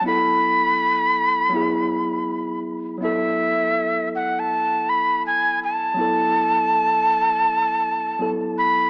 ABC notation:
X:1
M:4/4
L:1/16
Q:"Swing 16ths" 1/4=81
K:Emix
V:1 name="Flute"
b12- b2 z2 | e6 f a3 b2 g2 a2- | a12- a2 b2 |]
V:2 name="Tine electric piano"
[F,B,EA]8 [F,B,EG]8 | [F,B,EA]16 | [F,B,EA]12 [F,B,EA]4 |]